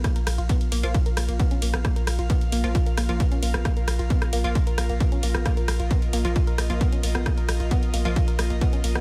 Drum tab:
RD |x-x-x-x-x-x-x-x-|x-x-x-x-x-x-x-x-|x-x-x-x-x-x-x-x-|x-x-x-x-x-x-x-x-|
HH |xxoxxxoxxxoxxxox|xxoxxxoxxxoxxxox|xxoxxxoxxxoxxxox|xxoxxxoxxxoxxxox|
SD |r-r-------r----r|r-r-------r----r|r-r--r----r----r|r-r-------r----r|
BD |o---o---o---o---|o---o---o---o---|o---o---o---o---|o---o---o---o---|

RD |x-x-x-x-x-x-x-x-|
HH |xxoxxxoxxxoxxxox|
SD |r-r-------r----r|
BD |o---o---o---o---|